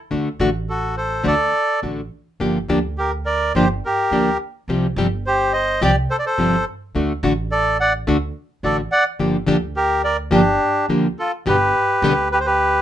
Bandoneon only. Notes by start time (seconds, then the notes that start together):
0.69 F#4 A4
0.97 A4 C5
1.27 A4 D5
2.98 G4 A#4
3.25 A#4 D5
3.55 G4 C5
3.85 G4 A#4
5.26 G4 C5
5.53 C5 D#5
5.83 G4 D5
6.10 A4 C5
6.19 D5
6.26 A4 C5
7.52 A4 D5
7.80 D5 F#5
8.64 A4 D5
8.92 D5 F#5
9.76 G4 A#4
10.04 A#4 D5
10.33 D4 G4
11.19 F4 A4
11.48 G4 B4
12.32 G4 B4
12.40 C5
12.46 G4 B4